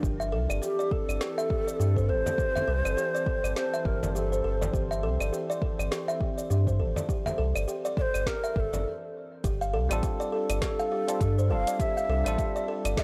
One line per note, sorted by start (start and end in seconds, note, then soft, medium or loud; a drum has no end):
0.00 0.34 G1 medium
0.00 8.86 E3 medium
0.00 1.30 D4 medium
0.00 2.12 G4 medium
0.00 0.18 G4 medium
0.00 kick loud
0.04 shaker medium
0.20 0.32 E5 loud
0.20 shaker soft
0.26 8.85 C4 medium
0.26 8.85 A4 medium
0.32 0.47 C2 medium
0.32 0.48 A4 loud
0.50 0.60 G1 medium
0.50 0.61 D5 medium
0.50 claves medium
0.50 shaker medium
0.62 0.72 G4 medium
0.62 0.94 G4 medium
0.62 shaker medium
0.79 0.91 D5 medium
0.79 shaker soft
0.91 1.07 A4 medium
0.91 2.11 A4 medium
0.91 kick loud
1.09 1.19 G1 loud
1.09 1.20 D5 medium
1.09 claves medium
1.09 shaker medium
1.21 1.36 G4 medium
1.21 snare medium
1.21 shaker medium
1.38 1.50 E5 loud
1.38 shaker soft
1.50 1.66 G4 medium
1.50 kick loud
1.67 1.79 D5 medium
1.67 shaker medium
1.80 2.11 G2 loud
1.80 1.89 G4 medium
1.80 shaker medium
1.96 2.04 C5 medium
1.96 kick medium
1.96 shaker soft
2.09 2.24 G1 medium
2.09 2.24 A4 medium
2.09 3.55 C5 loud
2.25 8.85 C5 medium
2.25 2.37 D5 medium
2.25 frame drum medium
2.25 shaker medium
2.38 2.54 G4 medium
2.38 kick loud
2.38 shaker medium
2.55 2.67 E5 loud
2.55 frame drum medium
2.55 shaker soft
2.68 2.82 C2 medium
2.68 2.83 A4 loud
2.85 2.96 G1 medium
2.85 2.97 D5 medium
2.85 claves medium
2.85 shaker medium
2.97 3.07 G4 medium
2.97 shaker soft
3.15 3.26 D5 medium
3.15 shaker soft
3.26 3.42 A4 medium
3.26 kick loud
3.44 3.54 G1 medium
3.44 3.55 D5 medium
3.44 claves medium
3.44 shaker medium
3.56 3.72 G4 medium
3.56 3.87 C5 loud
3.56 snare medium
3.56 shaker soft
3.74 3.85 E5 loud
3.74 shaker soft
3.85 4.00 G1 medium
3.85 4.02 G4 medium
3.85 4.15 A#4 medium
3.85 kick loud
4.03 4.42 G1 medium
4.03 4.14 D5 medium
4.03 frame drum medium
4.03 shaker medium
4.15 4.25 G4 medium
4.15 4.58 A4 medium
4.15 shaker medium
4.32 4.39 C5 medium
4.32 shaker soft
4.44 4.70 G1 medium
4.44 4.60 A4 medium
4.61 4.73 D5 medium
4.61 frame drum medium
4.61 shaker medium
4.73 5.05 G1 loud
4.73 4.89 G4 medium
4.73 kick loud
4.73 shaker medium
4.91 5.03 E5 loud
4.91 shaker soft
5.03 5.18 C2 medium
5.03 5.19 A4 loud
5.20 5.31 G1 medium
5.20 5.32 D5 medium
5.20 claves medium
5.20 shaker medium
5.33 5.42 G4 medium
5.33 shaker soft
5.50 5.61 D5 loud
5.50 shaker soft
5.62 5.77 A4 medium
5.62 kick loud
5.79 5.90 G1 loud
5.79 5.90 D5 medium
5.79 claves medium
5.79 shaker medium
5.91 6.07 G4 medium
5.91 snare medium
5.91 shaker soft
6.08 6.20 E5 loud
6.08 shaker soft
6.20 6.37 G4 medium
6.20 kick medium
6.38 6.49 D5 medium
6.38 shaker medium
6.50 6.82 G2 loud
6.50 6.60 G4 medium
6.50 shaker soft
6.67 6.74 C5 medium
6.67 kick medium
6.67 shaker soft
6.80 6.94 G1 medium
6.80 6.95 A4 medium
6.96 7.08 D5 medium
6.96 frame drum medium
6.96 shaker medium
7.09 7.24 G4 medium
7.09 kick loud
7.09 shaker medium
7.26 7.38 E5 medium
7.26 frame drum medium
7.26 shaker soft
7.38 7.53 C2 medium
7.38 7.54 A4 loud
7.55 7.66 G1 medium
7.55 7.67 D5 medium
7.55 claves medium
7.55 shaker medium
7.68 7.77 G4 medium
7.68 shaker medium
7.85 7.97 D5 loud
7.85 shaker soft
7.97 8.13 A4 medium
7.97 8.02 D5 medium
7.97 kick loud
8.01 8.28 C5 loud
8.14 8.25 G1 loud
8.14 8.25 D5 medium
8.14 claves medium
8.14 shaker medium
8.26 8.42 G4 medium
8.26 8.56 A#4 loud
8.26 kick medium
8.26 snare medium
8.26 shaker medium
8.44 8.55 E5 medium
8.44 shaker soft
8.56 8.71 G1 medium
8.56 8.72 A4 medium
8.56 8.61 A#4 medium
8.56 kick loud
8.60 8.86 A4 medium
8.73 8.86 G1 medium
8.73 8.80 D5 medium
8.73 frame drum medium
8.73 shaker medium
9.44 9.75 G1 loud
9.44 13.04 G3 medium
9.44 9.60 G4 medium
9.44 kick loud
9.44 closed hi-hat soft
9.44 shaker medium
9.61 9.73 F5 medium
9.61 shaker soft
9.72 9.88 C2 loud
9.72 13.04 D4 medium
9.72 9.89 A4 loud
9.89 10.01 A1 medium
9.89 11.03 G3 loud
9.89 11.04 C4 medium
9.89 11.05 F4 medium
9.89 11.05 A4 loud
9.89 10.03 D5 medium
9.89 closed hi-hat medium
9.89 claves medium
9.89 shaker medium
10.03 10.13 G4 medium
10.03 kick loud
10.03 closed hi-hat soft
10.03 shaker medium
10.20 10.32 D5 loud
10.20 shaker soft
10.32 10.48 A4 medium
10.32 10.60 A4 medium
10.50 10.60 G1 loud
10.50 10.61 D5 medium
10.50 closed hi-hat medium
10.50 claves medium
10.50 shaker medium
10.62 10.77 G4 medium
10.62 10.68 A#4 medium
10.62 kick medium
10.62 snare medium
10.62 closed hi-hat soft
10.62 shaker medium
10.67 11.53 A4 medium
10.79 10.91 F5 loud
10.79 shaker soft
10.92 11.08 G4 medium
10.98 13.04 D5 medium
11.07 11.20 G3 medium
11.07 11.21 C4 medium
11.07 11.21 F4 medium
11.07 11.21 A4 medium
11.07 11.20 D5 medium
11.07 closed hi-hat medium
11.07 shaker medium
11.21 11.51 G2 loud
11.21 11.31 G4 medium
11.21 kick loud
11.21 closed hi-hat soft
11.21 shaker medium
11.38 11.45 C5 medium
11.38 shaker soft
11.48 11.65 F1 medium
11.48 12.21 G3 medium
11.48 12.22 C4 medium
11.48 12.22 F4 medium
11.48 11.66 A4 medium
11.48 11.83 F5 loud
11.52 12.23 A4 medium
11.67 11.79 D5 medium
11.67 closed hi-hat medium
11.67 shaker medium
11.79 11.95 G4 medium
11.79 12.69 E5 loud
11.79 kick loud
11.79 closed hi-hat soft
11.79 shaker medium
11.97 12.09 F5 loud
11.97 shaker soft
12.09 12.24 C2 medium
12.09 12.25 A4 loud
12.24 12.36 A1 medium
12.24 13.04 G3 loud
12.24 13.04 C4 medium
12.24 13.04 F4 medium
12.24 13.04 A4 loud
12.24 12.38 D5 medium
12.24 closed hi-hat medium
12.24 claves medium
12.24 shaker medium
12.38 12.48 G4 medium
12.38 kick loud
12.38 closed hi-hat soft
12.38 shaker medium
12.56 12.67 D5 loud
12.56 shaker soft
12.68 12.83 A4 medium
12.85 12.95 G1 loud
12.85 12.96 D5 medium
12.85 closed hi-hat medium
12.85 claves medium
12.85 shaker medium
12.97 13.04 G4 medium
12.97 13.02 E5 loud
12.97 kick loud
12.97 snare medium
12.97 closed hi-hat soft
12.97 shaker medium